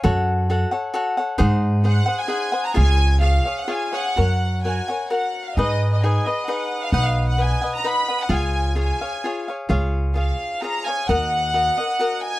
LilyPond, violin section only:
\new Staff \with { instrumentName = "Violin section" } { \time 3/4 \key des \major \tempo 4 = 131 r2. | r4 ges''8. aes''4 bes''16 | aes''4 f''8. ges''16 aes''8 ges''8~ | \key fis \major ges''4 gis''4 fis''8. eis''16 |
dis''8. dis''16 gis''8 dis''8 fis''8. eis''16 | fis''16 eis''8 fis''16 gis''8. ais''16 b''8. fis''16 | gis''4 gis''4. r8 | r4 eis''4 ais''8 gis''8 |
fis''2~ fis''8 gis''8 | }